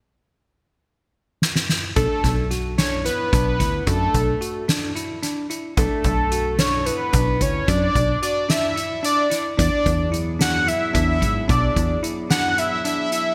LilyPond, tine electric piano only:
\new Staff \with { instrumentName = "Tine electric piano" } { \time 7/8 \key b \dorian \tempo 4 = 110 r2. r8 | d'4 fis'8 d'8 e'8 d'8 e'8 | d'4 fis'8 d'8 e'8 d'8 e'8 | d'4 fis'8 d'8 e'8 d'8 e'8 |
d'4 fis'8 d'8 e'8 d'8 e'8 | d'4 e'8 d'8 e'8 d'8 e'8 | d'4 e'8 d'8 e'8 d'8 e'8 | }